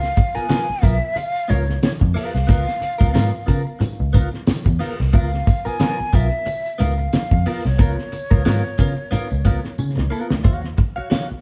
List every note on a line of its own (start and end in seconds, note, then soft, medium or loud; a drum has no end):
0.00 0.10 C#2 loud
0.00 0.37 F5 loud
0.00 muted clean electric guitar stroke soft
0.00 snare soft
0.00 tambourine soft
0.16 muted clean electric guitar stroke soft
0.16 kick loud
0.16 closed hi-hat medium
0.16 tambourine medium
0.16 muted conga medium
0.35 0.47 B3 soft
0.35 0.46 F4 medium
0.35 0.46 A#4 medium
0.35 0.85 G#5 loud
0.35 muted picked electric bass stroke soft
0.35 tambourine soft
0.49 0.67 B3 medium
0.49 0.68 F4 medium
0.49 0.66 A#4 medium
0.49 snare loud
0.49 closed hi-hat loud
0.49 tambourine loud
0.49 high conga medium
0.67 muted clean electric guitar stroke soft
0.67 muted picked electric bass stroke soft
0.82 0.98 B1 medium
0.82 0.96 B3 medium
0.82 0.97 F4 medium
0.82 0.97 A#4 medium
0.82 1.19 E5 medium
0.82 kick medium
0.82 snare soft
0.82 closed hi-hat medium
0.82 tambourine medium
0.82 muted conga medium
1.00 muted clean electric guitar stroke soft
1.15 1.51 F5 loud
1.15 muted clean electric guitar stroke soft
1.15 closed hi-hat medium
1.15 tambourine medium
1.15 muted conga medium
1.36 tambourine soft
1.48 1.76 C#2 medium
1.48 1.62 B3 medium
1.48 1.63 F4 medium
1.48 1.63 A#4 medium
1.48 1.82 C#5 medium
1.48 closed hi-hat medium
1.48 tambourine medium
1.48 muted conga soft
1.48 low conga loud
1.66 muted clean electric guitar stroke soft
1.66 snare soft
1.82 1.91 C#5 loud
1.82 muted picked electric bass stroke medium
1.82 snare loud
1.82 closed hi-hat medium
1.82 tambourine medium
1.82 high conga medium
2.00 2.13 F2 medium
2.00 muted clean electric guitar stroke soft
2.00 kick medium
2.00 high conga medium
2.14 2.36 B3 medium
2.14 2.33 F4 medium
2.14 2.32 A#4 medium
2.14 4.11 F5 loud
2.14 open hi-hat loud
2.14 tambourine soft
2.14 high conga medium
2.33 2.46 C2 medium
2.33 muted clean electric guitar stroke soft
2.33 snare soft
2.33 tambourine soft
2.47 2.64 C#2 loud
2.47 2.65 B3 medium
2.47 2.66 F4 medium
2.47 2.65 A#4 medium
2.47 kick loud
2.47 closed hi-hat loud
2.47 tambourine medium
2.66 muted clean electric guitar stroke soft
2.66 snare soft
2.66 tambourine soft
2.80 muted clean electric guitar stroke soft
2.80 closed hi-hat medium
2.80 tambourine medium
2.80 muted conga medium
2.98 3.12 C#2 medium
2.98 3.11 B3 medium
2.98 3.11 F4 medium
2.98 3.10 A#4 medium
2.98 kick medium
2.98 tambourine soft
3.13 3.30 G#2 medium
3.13 3.32 B3 medium
3.13 3.32 F4 medium
3.13 3.31 A#4 medium
3.13 snare loud
3.13 closed hi-hat loud
3.13 tambourine loud
3.13 high conga medium
3.46 3.63 C#3 medium
3.46 3.61 B3 medium
3.46 3.61 F4 medium
3.46 3.62 A#4 medium
3.46 kick medium
3.46 closed hi-hat medium
3.46 tambourine medium
3.46 muted conga medium
3.65 muted clean electric guitar stroke soft
3.79 muted clean electric guitar stroke medium
3.79 muted picked electric bass stroke medium
3.79 closed hi-hat medium
3.79 tambourine medium
3.79 muted conga medium
3.79 low conga loud
4.00 4.26 C#2 medium
4.13 4.27 B3 medium
4.13 4.28 F4 medium
4.13 4.29 A#4 medium
4.13 kick medium
4.13 closed hi-hat medium
4.13 tambourine medium
4.13 low conga medium
4.32 muted clean electric guitar stroke soft
4.32 snare soft
4.47 muted picked electric bass stroke medium
4.47 snare loud
4.47 closed hi-hat medium
4.47 tambourine medium
4.47 high conga medium
4.65 4.78 E2 medium
4.65 muted clean electric guitar stroke soft
4.65 kick medium
4.65 high conga medium
4.79 4.98 B3 medium
4.79 4.98 F4 medium
4.79 4.97 A#4 medium
4.79 open hi-hat medium
4.79 tambourine medium
4.79 high conga medium
4.98 5.11 C2 medium
4.98 muted clean electric guitar stroke soft
4.98 snare soft
5.13 5.40 C#2 medium
5.13 5.31 B3 medium
5.13 5.32 F4 loud
5.13 5.30 A#4 medium
5.13 5.68 F5 medium
5.13 kick loud
5.13 closed hi-hat medium
5.13 tambourine medium
5.31 muted clean electric guitar stroke soft
5.31 snare soft
5.31 tambourine soft
5.46 muted clean electric guitar stroke soft
5.46 kick loud
5.46 closed hi-hat medium
5.46 tambourine medium
5.46 muted conga medium
5.65 5.77 B3 medium
5.65 5.77 F4 medium
5.65 5.76 A#4 medium
5.65 6.16 G#5 medium
5.65 muted picked electric bass stroke soft
5.65 tambourine soft
5.79 5.97 B3 medium
5.79 5.98 F4 medium
5.79 5.97 A#4 loud
5.79 snare loud
5.79 closed hi-hat medium
5.79 tambourine loud
5.79 high conga medium
5.98 muted clean electric guitar stroke soft
5.98 muted picked electric bass stroke soft
6.13 6.28 B1 medium
6.13 6.27 B3 medium
6.13 6.27 F4 medium
6.13 6.28 A#4 medium
6.13 6.82 E5 loud
6.13 kick medium
6.13 snare soft
6.13 closed hi-hat medium
6.13 tambourine medium
6.13 muted conga medium
6.32 muted clean electric guitar stroke soft
6.46 muted clean electric guitar stroke soft
6.46 closed hi-hat medium
6.46 tambourine medium
6.46 muted conga medium
6.66 tambourine soft
6.78 7.06 C#2 loud
6.78 6.93 B3 medium
6.78 6.93 F4 medium
6.78 6.94 A#4 medium
6.78 7.68 F5 loud
6.78 closed hi-hat medium
6.78 tambourine medium
6.78 muted conga soft
6.78 low conga medium
6.98 muted clean electric guitar stroke medium
7.13 muted picked electric bass stroke soft
7.13 snare loud
7.13 closed hi-hat medium
7.13 tambourine medium
7.13 high conga medium
7.31 7.43 F2 medium
7.31 muted clean electric guitar stroke soft
7.31 kick medium
7.31 high conga medium
7.46 7.64 B3 medium
7.46 7.64 F4 medium
7.46 7.63 A#4 loud
7.46 open hi-hat medium
7.46 tambourine soft
7.46 high conga medium
7.65 7.77 C2 medium
7.65 10.13 C#5 medium
7.65 muted clean electric guitar stroke soft
7.65 snare soft
7.78 7.94 C#2 loud
7.78 7.97 B3 medium
7.78 7.97 F4 medium
7.78 7.96 A#4 medium
7.78 kick loud
7.78 closed hi-hat loud
7.78 tambourine medium
7.98 muted clean electric guitar stroke soft
7.98 snare soft
8.12 muted clean electric guitar stroke soft
8.12 closed hi-hat medium
8.12 tambourine medium
8.12 muted conga medium
8.31 8.43 C#2 medium
8.31 8.43 B3 medium
8.31 8.42 F4 medium
8.31 8.42 A#4 medium
8.31 kick loud
8.45 8.61 G#2 medium
8.45 8.63 B3 medium
8.45 8.64 F4 loud
8.45 8.62 A#4 loud
8.45 snare loud
8.45 closed hi-hat loud
8.45 tambourine loud
8.45 high conga medium
8.64 muted clean electric guitar stroke soft
8.78 8.94 C#3 medium
8.78 8.92 B3 medium
8.78 8.93 F4 medium
8.78 8.93 A#4 medium
8.78 kick medium
8.78 snare soft
8.78 closed hi-hat medium
8.78 tambourine medium
8.78 muted conga medium
8.97 muted clean electric guitar stroke soft
9.11 9.29 B3 medium
9.11 9.29 F4 medium
9.11 9.28 A#4 medium
9.11 muted picked electric bass stroke soft
9.11 closed hi-hat medium
9.11 tambourine medium
9.11 muted conga medium
9.11 low conga medium
9.29 9.57 C#2 medium
9.29 muted clean electric guitar stroke soft
9.29 tambourine soft
9.45 9.59 B3 medium
9.45 9.59 F4 medium
9.45 9.60 A#4 medium
9.45 kick medium
9.45 closed hi-hat medium
9.45 tambourine medium
9.45 low conga medium
9.65 muted clean electric guitar stroke soft
9.65 snare soft
9.78 9.93 C#3 loud
9.78 tambourine medium
9.78 high conga medium
9.96 10.09 C#2 medium
9.96 muted clean electric guitar stroke soft
9.96 snare medium
9.96 high conga medium
10.10 10.33 B3 medium
10.10 10.29 F4 medium
10.10 10.28 A#4 medium
10.10 tambourine medium
10.29 10.42 D2 medium
10.29 muted clean electric guitar stroke soft
10.29 snare loud
10.44 10.71 D#2 loud
10.44 10.66 F#4 medium
10.44 10.62 C#5 medium
10.44 10.61 F5 medium
10.44 kick loud
10.44 closed hi-hat loud
10.62 muted clean electric guitar stroke soft
10.62 snare soft
10.77 muted clean electric guitar stroke soft
10.77 kick loud
10.77 closed hi-hat medium
10.77 muted conga medium
10.96 11.08 F#4 medium
10.96 11.08 C#5 medium
10.96 11.07 F5 medium
10.96 muted picked electric bass stroke soft
11.10 11.28 F#4 medium
11.10 11.29 C#5 medium
11.10 11.28 F5 medium
11.10 snare loud
11.10 closed hi-hat medium
11.10 high conga medium
11.29 muted clean electric guitar stroke soft
11.29 muted picked electric bass stroke soft